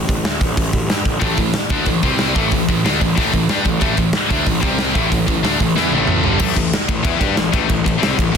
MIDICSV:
0, 0, Header, 1, 4, 480
1, 0, Start_track
1, 0, Key_signature, 0, "minor"
1, 0, Tempo, 323625
1, 1796, Time_signature, 4, 2, 24, 8
1, 12416, End_track
2, 0, Start_track
2, 0, Title_t, "Distorted electric guitar"
2, 0, Program_c, 0, 30
2, 1776, Note_on_c, 0, 57, 110
2, 1779, Note_on_c, 0, 45, 88
2, 1786, Note_on_c, 0, 52, 96
2, 2020, Note_off_c, 0, 57, 0
2, 2021, Note_off_c, 0, 45, 0
2, 2025, Note_off_c, 0, 52, 0
2, 2044, Note_on_c, 0, 52, 77
2, 2046, Note_on_c, 0, 45, 60
2, 2233, Note_off_c, 0, 52, 0
2, 2234, Note_off_c, 0, 45, 0
2, 2535, Note_on_c, 0, 50, 96
2, 2542, Note_on_c, 0, 57, 99
2, 2549, Note_on_c, 0, 62, 95
2, 2747, Note_off_c, 0, 50, 0
2, 2753, Note_on_c, 0, 45, 56
2, 2763, Note_off_c, 0, 57, 0
2, 2767, Note_off_c, 0, 62, 0
2, 2771, Note_on_c, 0, 52, 73
2, 2948, Note_off_c, 0, 45, 0
2, 2957, Note_off_c, 0, 52, 0
2, 3009, Note_on_c, 0, 48, 79
2, 3022, Note_on_c, 0, 60, 91
2, 3024, Note_on_c, 0, 55, 80
2, 3477, Note_off_c, 0, 48, 0
2, 3482, Note_off_c, 0, 55, 0
2, 3484, Note_off_c, 0, 60, 0
2, 3485, Note_on_c, 0, 45, 84
2, 3487, Note_on_c, 0, 52, 87
2, 3502, Note_on_c, 0, 57, 108
2, 3715, Note_off_c, 0, 45, 0
2, 3717, Note_off_c, 0, 52, 0
2, 3724, Note_off_c, 0, 57, 0
2, 3740, Note_on_c, 0, 45, 62
2, 3748, Note_on_c, 0, 52, 74
2, 3922, Note_off_c, 0, 45, 0
2, 3926, Note_off_c, 0, 52, 0
2, 4004, Note_on_c, 0, 52, 77
2, 4009, Note_on_c, 0, 45, 66
2, 4174, Note_off_c, 0, 52, 0
2, 4177, Note_off_c, 0, 45, 0
2, 4220, Note_on_c, 0, 50, 94
2, 4228, Note_on_c, 0, 62, 93
2, 4233, Note_on_c, 0, 57, 93
2, 4443, Note_off_c, 0, 50, 0
2, 4447, Note_off_c, 0, 62, 0
2, 4450, Note_off_c, 0, 57, 0
2, 4467, Note_on_c, 0, 45, 65
2, 4477, Note_on_c, 0, 52, 75
2, 4646, Note_off_c, 0, 45, 0
2, 4651, Note_off_c, 0, 52, 0
2, 4677, Note_on_c, 0, 45, 95
2, 4690, Note_on_c, 0, 52, 105
2, 4701, Note_on_c, 0, 57, 93
2, 4912, Note_off_c, 0, 45, 0
2, 4918, Note_off_c, 0, 52, 0
2, 4924, Note_off_c, 0, 57, 0
2, 4934, Note_on_c, 0, 52, 67
2, 4942, Note_on_c, 0, 45, 64
2, 5120, Note_off_c, 0, 52, 0
2, 5124, Note_off_c, 0, 45, 0
2, 5190, Note_on_c, 0, 62, 91
2, 5192, Note_on_c, 0, 55, 81
2, 5193, Note_on_c, 0, 67, 90
2, 5405, Note_on_c, 0, 45, 66
2, 5409, Note_off_c, 0, 62, 0
2, 5410, Note_off_c, 0, 55, 0
2, 5410, Note_off_c, 0, 67, 0
2, 5424, Note_on_c, 0, 52, 75
2, 5595, Note_off_c, 0, 45, 0
2, 5605, Note_off_c, 0, 52, 0
2, 5633, Note_on_c, 0, 45, 91
2, 5647, Note_on_c, 0, 52, 104
2, 5658, Note_on_c, 0, 57, 107
2, 5867, Note_off_c, 0, 45, 0
2, 5868, Note_off_c, 0, 52, 0
2, 5883, Note_off_c, 0, 57, 0
2, 5884, Note_on_c, 0, 45, 67
2, 5886, Note_on_c, 0, 52, 81
2, 6075, Note_off_c, 0, 45, 0
2, 6076, Note_off_c, 0, 52, 0
2, 6359, Note_on_c, 0, 50, 97
2, 6375, Note_on_c, 0, 57, 87
2, 6385, Note_on_c, 0, 62, 98
2, 6579, Note_off_c, 0, 50, 0
2, 6585, Note_on_c, 0, 45, 63
2, 6587, Note_off_c, 0, 57, 0
2, 6593, Note_on_c, 0, 52, 69
2, 6606, Note_off_c, 0, 62, 0
2, 6785, Note_off_c, 0, 45, 0
2, 6789, Note_off_c, 0, 52, 0
2, 6826, Note_on_c, 0, 48, 80
2, 6833, Note_on_c, 0, 55, 85
2, 6838, Note_on_c, 0, 60, 98
2, 7307, Note_off_c, 0, 48, 0
2, 7311, Note_off_c, 0, 55, 0
2, 7313, Note_off_c, 0, 60, 0
2, 7316, Note_on_c, 0, 45, 81
2, 7332, Note_on_c, 0, 57, 96
2, 7337, Note_on_c, 0, 52, 80
2, 7535, Note_off_c, 0, 45, 0
2, 7540, Note_off_c, 0, 52, 0
2, 7553, Note_on_c, 0, 45, 66
2, 7557, Note_on_c, 0, 52, 70
2, 7560, Note_off_c, 0, 57, 0
2, 7749, Note_off_c, 0, 45, 0
2, 7752, Note_off_c, 0, 52, 0
2, 7806, Note_on_c, 0, 45, 66
2, 7811, Note_on_c, 0, 52, 72
2, 7996, Note_off_c, 0, 45, 0
2, 7998, Note_off_c, 0, 52, 0
2, 8050, Note_on_c, 0, 50, 82
2, 8055, Note_on_c, 0, 62, 105
2, 8057, Note_on_c, 0, 57, 85
2, 8277, Note_off_c, 0, 50, 0
2, 8281, Note_off_c, 0, 62, 0
2, 8282, Note_off_c, 0, 57, 0
2, 8283, Note_on_c, 0, 45, 63
2, 8302, Note_on_c, 0, 52, 64
2, 8474, Note_off_c, 0, 45, 0
2, 8484, Note_off_c, 0, 52, 0
2, 8542, Note_on_c, 0, 52, 86
2, 8558, Note_on_c, 0, 59, 92
2, 8559, Note_on_c, 0, 64, 92
2, 8764, Note_off_c, 0, 52, 0
2, 8772, Note_off_c, 0, 59, 0
2, 8773, Note_off_c, 0, 64, 0
2, 8807, Note_on_c, 0, 45, 78
2, 8812, Note_on_c, 0, 52, 81
2, 8820, Note_on_c, 0, 57, 88
2, 9256, Note_off_c, 0, 45, 0
2, 9259, Note_off_c, 0, 52, 0
2, 9263, Note_off_c, 0, 57, 0
2, 9264, Note_on_c, 0, 50, 91
2, 9265, Note_on_c, 0, 43, 83
2, 9276, Note_on_c, 0, 55, 95
2, 9469, Note_off_c, 0, 50, 0
2, 9475, Note_on_c, 0, 45, 97
2, 9477, Note_off_c, 0, 55, 0
2, 9483, Note_on_c, 0, 52, 102
2, 9485, Note_off_c, 0, 43, 0
2, 9492, Note_on_c, 0, 57, 110
2, 9710, Note_off_c, 0, 45, 0
2, 9714, Note_off_c, 0, 52, 0
2, 9719, Note_off_c, 0, 57, 0
2, 9742, Note_on_c, 0, 45, 71
2, 9745, Note_on_c, 0, 52, 73
2, 9922, Note_off_c, 0, 45, 0
2, 9924, Note_off_c, 0, 52, 0
2, 10212, Note_on_c, 0, 45, 66
2, 10223, Note_on_c, 0, 52, 79
2, 10397, Note_off_c, 0, 45, 0
2, 10403, Note_off_c, 0, 52, 0
2, 10420, Note_on_c, 0, 52, 98
2, 10438, Note_on_c, 0, 59, 105
2, 10440, Note_on_c, 0, 64, 98
2, 10638, Note_off_c, 0, 59, 0
2, 10644, Note_on_c, 0, 55, 89
2, 10662, Note_off_c, 0, 52, 0
2, 10662, Note_off_c, 0, 64, 0
2, 10668, Note_on_c, 0, 62, 89
2, 10670, Note_on_c, 0, 67, 103
2, 10893, Note_off_c, 0, 55, 0
2, 10903, Note_on_c, 0, 45, 66
2, 10905, Note_off_c, 0, 62, 0
2, 10906, Note_off_c, 0, 67, 0
2, 10908, Note_on_c, 0, 52, 73
2, 11102, Note_off_c, 0, 45, 0
2, 11104, Note_off_c, 0, 52, 0
2, 11156, Note_on_c, 0, 45, 90
2, 11163, Note_on_c, 0, 52, 98
2, 11175, Note_on_c, 0, 57, 101
2, 11364, Note_off_c, 0, 45, 0
2, 11373, Note_off_c, 0, 52, 0
2, 11382, Note_on_c, 0, 45, 68
2, 11390, Note_on_c, 0, 52, 76
2, 11398, Note_off_c, 0, 57, 0
2, 11581, Note_off_c, 0, 45, 0
2, 11585, Note_off_c, 0, 52, 0
2, 11631, Note_on_c, 0, 45, 70
2, 11638, Note_on_c, 0, 52, 74
2, 11825, Note_off_c, 0, 45, 0
2, 11828, Note_off_c, 0, 52, 0
2, 11837, Note_on_c, 0, 48, 96
2, 11842, Note_on_c, 0, 55, 93
2, 11848, Note_on_c, 0, 60, 109
2, 12088, Note_off_c, 0, 48, 0
2, 12091, Note_off_c, 0, 55, 0
2, 12093, Note_off_c, 0, 60, 0
2, 12109, Note_on_c, 0, 45, 67
2, 12122, Note_on_c, 0, 52, 75
2, 12303, Note_off_c, 0, 45, 0
2, 12309, Note_off_c, 0, 52, 0
2, 12336, Note_on_c, 0, 45, 70
2, 12339, Note_on_c, 0, 52, 76
2, 12416, Note_off_c, 0, 45, 0
2, 12416, Note_off_c, 0, 52, 0
2, 12416, End_track
3, 0, Start_track
3, 0, Title_t, "Picked electric bass"
3, 0, Program_c, 1, 34
3, 129, Note_on_c, 1, 33, 81
3, 345, Note_off_c, 1, 33, 0
3, 352, Note_on_c, 1, 38, 94
3, 577, Note_off_c, 1, 38, 0
3, 603, Note_on_c, 1, 33, 73
3, 823, Note_off_c, 1, 33, 0
3, 851, Note_on_c, 1, 33, 92
3, 1067, Note_off_c, 1, 33, 0
3, 1086, Note_on_c, 1, 33, 75
3, 1293, Note_off_c, 1, 33, 0
3, 1302, Note_on_c, 1, 43, 90
3, 1532, Note_off_c, 1, 43, 0
3, 1565, Note_on_c, 1, 33, 81
3, 1785, Note_off_c, 1, 33, 0
3, 1805, Note_on_c, 1, 33, 91
3, 2025, Note_off_c, 1, 33, 0
3, 2040, Note_on_c, 1, 33, 75
3, 2262, Note_off_c, 1, 33, 0
3, 2524, Note_on_c, 1, 38, 92
3, 2745, Note_off_c, 1, 38, 0
3, 2763, Note_on_c, 1, 33, 83
3, 2984, Note_off_c, 1, 33, 0
3, 3017, Note_on_c, 1, 36, 91
3, 3455, Note_off_c, 1, 36, 0
3, 3504, Note_on_c, 1, 33, 89
3, 3716, Note_off_c, 1, 33, 0
3, 3739, Note_on_c, 1, 33, 71
3, 3953, Note_off_c, 1, 33, 0
3, 3980, Note_on_c, 1, 33, 81
3, 4194, Note_off_c, 1, 33, 0
3, 4223, Note_on_c, 1, 38, 94
3, 4436, Note_off_c, 1, 38, 0
3, 4470, Note_on_c, 1, 33, 81
3, 4680, Note_off_c, 1, 33, 0
3, 4709, Note_on_c, 1, 33, 94
3, 4919, Note_off_c, 1, 33, 0
3, 4943, Note_on_c, 1, 33, 77
3, 5156, Note_off_c, 1, 33, 0
3, 5173, Note_on_c, 1, 43, 100
3, 5391, Note_off_c, 1, 43, 0
3, 5420, Note_on_c, 1, 33, 88
3, 5635, Note_off_c, 1, 33, 0
3, 5654, Note_on_c, 1, 33, 91
3, 5872, Note_off_c, 1, 33, 0
3, 5898, Note_on_c, 1, 33, 82
3, 6113, Note_off_c, 1, 33, 0
3, 6376, Note_on_c, 1, 38, 92
3, 6593, Note_off_c, 1, 38, 0
3, 6625, Note_on_c, 1, 33, 79
3, 6837, Note_off_c, 1, 33, 0
3, 6863, Note_on_c, 1, 36, 90
3, 7300, Note_off_c, 1, 36, 0
3, 7353, Note_on_c, 1, 33, 99
3, 7562, Note_off_c, 1, 33, 0
3, 7596, Note_on_c, 1, 33, 70
3, 7804, Note_off_c, 1, 33, 0
3, 7834, Note_on_c, 1, 33, 82
3, 8042, Note_off_c, 1, 33, 0
3, 8061, Note_on_c, 1, 38, 93
3, 8275, Note_off_c, 1, 38, 0
3, 8312, Note_on_c, 1, 33, 77
3, 8521, Note_off_c, 1, 33, 0
3, 8530, Note_on_c, 1, 40, 89
3, 8749, Note_off_c, 1, 40, 0
3, 8770, Note_on_c, 1, 33, 96
3, 9212, Note_off_c, 1, 33, 0
3, 9246, Note_on_c, 1, 31, 95
3, 9467, Note_off_c, 1, 31, 0
3, 9494, Note_on_c, 1, 33, 99
3, 9710, Note_off_c, 1, 33, 0
3, 9735, Note_on_c, 1, 33, 91
3, 9951, Note_off_c, 1, 33, 0
3, 10220, Note_on_c, 1, 33, 78
3, 10433, Note_off_c, 1, 33, 0
3, 10451, Note_on_c, 1, 40, 96
3, 10668, Note_off_c, 1, 40, 0
3, 10690, Note_on_c, 1, 43, 103
3, 10899, Note_off_c, 1, 43, 0
3, 10908, Note_on_c, 1, 33, 76
3, 11135, Note_off_c, 1, 33, 0
3, 11175, Note_on_c, 1, 33, 104
3, 11389, Note_off_c, 1, 33, 0
3, 11415, Note_on_c, 1, 33, 85
3, 11629, Note_off_c, 1, 33, 0
3, 11658, Note_on_c, 1, 33, 86
3, 11870, Note_off_c, 1, 33, 0
3, 11877, Note_on_c, 1, 36, 93
3, 12099, Note_off_c, 1, 36, 0
3, 12150, Note_on_c, 1, 33, 78
3, 12356, Note_off_c, 1, 33, 0
3, 12416, End_track
4, 0, Start_track
4, 0, Title_t, "Drums"
4, 131, Note_on_c, 9, 36, 86
4, 143, Note_on_c, 9, 46, 61
4, 280, Note_off_c, 9, 36, 0
4, 291, Note_off_c, 9, 46, 0
4, 368, Note_on_c, 9, 46, 73
4, 372, Note_on_c, 9, 38, 116
4, 516, Note_off_c, 9, 46, 0
4, 520, Note_off_c, 9, 38, 0
4, 608, Note_on_c, 9, 36, 94
4, 608, Note_on_c, 9, 46, 64
4, 756, Note_off_c, 9, 36, 0
4, 756, Note_off_c, 9, 46, 0
4, 850, Note_on_c, 9, 36, 106
4, 855, Note_on_c, 9, 46, 79
4, 998, Note_off_c, 9, 36, 0
4, 1003, Note_off_c, 9, 46, 0
4, 1080, Note_on_c, 9, 46, 53
4, 1088, Note_on_c, 9, 36, 80
4, 1228, Note_off_c, 9, 46, 0
4, 1236, Note_off_c, 9, 36, 0
4, 1330, Note_on_c, 9, 46, 69
4, 1334, Note_on_c, 9, 38, 97
4, 1478, Note_off_c, 9, 46, 0
4, 1483, Note_off_c, 9, 38, 0
4, 1561, Note_on_c, 9, 46, 53
4, 1564, Note_on_c, 9, 36, 82
4, 1710, Note_off_c, 9, 46, 0
4, 1713, Note_off_c, 9, 36, 0
4, 1795, Note_on_c, 9, 46, 73
4, 1805, Note_on_c, 9, 36, 100
4, 1943, Note_off_c, 9, 46, 0
4, 1954, Note_off_c, 9, 36, 0
4, 2036, Note_on_c, 9, 46, 56
4, 2045, Note_on_c, 9, 36, 90
4, 2184, Note_off_c, 9, 46, 0
4, 2193, Note_off_c, 9, 36, 0
4, 2275, Note_on_c, 9, 46, 69
4, 2280, Note_on_c, 9, 38, 101
4, 2423, Note_off_c, 9, 46, 0
4, 2428, Note_off_c, 9, 38, 0
4, 2513, Note_on_c, 9, 46, 55
4, 2525, Note_on_c, 9, 36, 111
4, 2661, Note_off_c, 9, 46, 0
4, 2674, Note_off_c, 9, 36, 0
4, 2755, Note_on_c, 9, 46, 69
4, 2765, Note_on_c, 9, 36, 88
4, 2903, Note_off_c, 9, 46, 0
4, 2913, Note_off_c, 9, 36, 0
4, 3003, Note_on_c, 9, 46, 50
4, 3012, Note_on_c, 9, 36, 94
4, 3151, Note_off_c, 9, 46, 0
4, 3160, Note_off_c, 9, 36, 0
4, 3242, Note_on_c, 9, 46, 75
4, 3247, Note_on_c, 9, 38, 104
4, 3391, Note_off_c, 9, 46, 0
4, 3395, Note_off_c, 9, 38, 0
4, 3491, Note_on_c, 9, 46, 55
4, 3499, Note_on_c, 9, 36, 98
4, 3639, Note_off_c, 9, 46, 0
4, 3647, Note_off_c, 9, 36, 0
4, 3727, Note_on_c, 9, 46, 72
4, 3738, Note_on_c, 9, 36, 89
4, 3875, Note_off_c, 9, 46, 0
4, 3886, Note_off_c, 9, 36, 0
4, 3983, Note_on_c, 9, 36, 91
4, 3989, Note_on_c, 9, 46, 57
4, 4132, Note_off_c, 9, 36, 0
4, 4138, Note_off_c, 9, 46, 0
4, 4236, Note_on_c, 9, 46, 79
4, 4241, Note_on_c, 9, 38, 112
4, 4385, Note_off_c, 9, 46, 0
4, 4389, Note_off_c, 9, 38, 0
4, 4470, Note_on_c, 9, 36, 90
4, 4476, Note_on_c, 9, 46, 59
4, 4618, Note_off_c, 9, 36, 0
4, 4625, Note_off_c, 9, 46, 0
4, 4709, Note_on_c, 9, 46, 80
4, 4710, Note_on_c, 9, 36, 104
4, 4857, Note_off_c, 9, 46, 0
4, 4859, Note_off_c, 9, 36, 0
4, 4946, Note_on_c, 9, 46, 57
4, 4947, Note_on_c, 9, 36, 80
4, 5095, Note_off_c, 9, 46, 0
4, 5096, Note_off_c, 9, 36, 0
4, 5179, Note_on_c, 9, 46, 80
4, 5183, Note_on_c, 9, 38, 103
4, 5327, Note_off_c, 9, 46, 0
4, 5332, Note_off_c, 9, 38, 0
4, 5409, Note_on_c, 9, 46, 55
4, 5423, Note_on_c, 9, 36, 86
4, 5558, Note_off_c, 9, 46, 0
4, 5571, Note_off_c, 9, 36, 0
4, 5651, Note_on_c, 9, 46, 78
4, 5663, Note_on_c, 9, 36, 102
4, 5799, Note_off_c, 9, 46, 0
4, 5812, Note_off_c, 9, 36, 0
4, 5891, Note_on_c, 9, 46, 57
4, 5902, Note_on_c, 9, 36, 88
4, 6039, Note_off_c, 9, 46, 0
4, 6051, Note_off_c, 9, 36, 0
4, 6122, Note_on_c, 9, 46, 73
4, 6127, Note_on_c, 9, 38, 107
4, 6271, Note_off_c, 9, 46, 0
4, 6275, Note_off_c, 9, 38, 0
4, 6386, Note_on_c, 9, 36, 103
4, 6388, Note_on_c, 9, 46, 59
4, 6535, Note_off_c, 9, 36, 0
4, 6536, Note_off_c, 9, 46, 0
4, 6619, Note_on_c, 9, 46, 77
4, 6624, Note_on_c, 9, 36, 89
4, 6768, Note_off_c, 9, 46, 0
4, 6772, Note_off_c, 9, 36, 0
4, 6854, Note_on_c, 9, 46, 53
4, 6865, Note_on_c, 9, 36, 90
4, 7003, Note_off_c, 9, 46, 0
4, 7013, Note_off_c, 9, 36, 0
4, 7095, Note_on_c, 9, 46, 70
4, 7099, Note_on_c, 9, 38, 107
4, 7243, Note_off_c, 9, 46, 0
4, 7247, Note_off_c, 9, 38, 0
4, 7347, Note_on_c, 9, 36, 98
4, 7351, Note_on_c, 9, 46, 52
4, 7495, Note_off_c, 9, 36, 0
4, 7499, Note_off_c, 9, 46, 0
4, 7591, Note_on_c, 9, 36, 89
4, 7600, Note_on_c, 9, 46, 67
4, 7740, Note_off_c, 9, 36, 0
4, 7748, Note_off_c, 9, 46, 0
4, 7832, Note_on_c, 9, 36, 94
4, 7833, Note_on_c, 9, 46, 58
4, 7981, Note_off_c, 9, 36, 0
4, 7981, Note_off_c, 9, 46, 0
4, 8075, Note_on_c, 9, 46, 78
4, 8079, Note_on_c, 9, 38, 104
4, 8223, Note_off_c, 9, 46, 0
4, 8227, Note_off_c, 9, 38, 0
4, 8312, Note_on_c, 9, 36, 92
4, 8332, Note_on_c, 9, 46, 60
4, 8460, Note_off_c, 9, 36, 0
4, 8481, Note_off_c, 9, 46, 0
4, 8549, Note_on_c, 9, 38, 63
4, 8697, Note_off_c, 9, 38, 0
4, 8785, Note_on_c, 9, 48, 60
4, 8933, Note_off_c, 9, 48, 0
4, 9009, Note_on_c, 9, 45, 85
4, 9157, Note_off_c, 9, 45, 0
4, 9249, Note_on_c, 9, 43, 77
4, 9398, Note_off_c, 9, 43, 0
4, 9484, Note_on_c, 9, 49, 119
4, 9496, Note_on_c, 9, 36, 111
4, 9632, Note_off_c, 9, 49, 0
4, 9644, Note_off_c, 9, 36, 0
4, 9738, Note_on_c, 9, 36, 91
4, 9742, Note_on_c, 9, 51, 72
4, 9886, Note_off_c, 9, 36, 0
4, 9890, Note_off_c, 9, 51, 0
4, 9985, Note_on_c, 9, 51, 95
4, 9990, Note_on_c, 9, 38, 111
4, 10134, Note_off_c, 9, 51, 0
4, 10138, Note_off_c, 9, 38, 0
4, 10213, Note_on_c, 9, 51, 74
4, 10215, Note_on_c, 9, 36, 90
4, 10361, Note_off_c, 9, 51, 0
4, 10363, Note_off_c, 9, 36, 0
4, 10451, Note_on_c, 9, 36, 119
4, 10451, Note_on_c, 9, 51, 105
4, 10599, Note_off_c, 9, 36, 0
4, 10599, Note_off_c, 9, 51, 0
4, 10691, Note_on_c, 9, 36, 94
4, 10696, Note_on_c, 9, 51, 64
4, 10840, Note_off_c, 9, 36, 0
4, 10844, Note_off_c, 9, 51, 0
4, 10932, Note_on_c, 9, 51, 97
4, 10936, Note_on_c, 9, 38, 107
4, 11080, Note_off_c, 9, 51, 0
4, 11085, Note_off_c, 9, 38, 0
4, 11176, Note_on_c, 9, 36, 108
4, 11185, Note_on_c, 9, 51, 71
4, 11325, Note_off_c, 9, 36, 0
4, 11334, Note_off_c, 9, 51, 0
4, 11411, Note_on_c, 9, 51, 94
4, 11417, Note_on_c, 9, 36, 99
4, 11559, Note_off_c, 9, 51, 0
4, 11565, Note_off_c, 9, 36, 0
4, 11662, Note_on_c, 9, 36, 97
4, 11679, Note_on_c, 9, 51, 71
4, 11810, Note_off_c, 9, 36, 0
4, 11828, Note_off_c, 9, 51, 0
4, 11907, Note_on_c, 9, 51, 103
4, 11911, Note_on_c, 9, 38, 117
4, 12055, Note_off_c, 9, 51, 0
4, 12060, Note_off_c, 9, 38, 0
4, 12144, Note_on_c, 9, 36, 98
4, 12159, Note_on_c, 9, 51, 84
4, 12292, Note_off_c, 9, 36, 0
4, 12307, Note_off_c, 9, 51, 0
4, 12416, End_track
0, 0, End_of_file